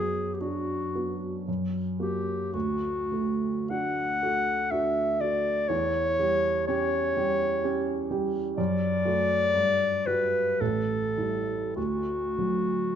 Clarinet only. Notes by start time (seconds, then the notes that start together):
Already playing: G#4
0.34 G4
0.40 F#4
1.99 G4
2.53 F#4
3.70 F#5
4.71 E5
5.20 D5
5.68 C#5
6.67 C#5
8.57 D5
10.06 B4
10.61 A4
11.76 F#4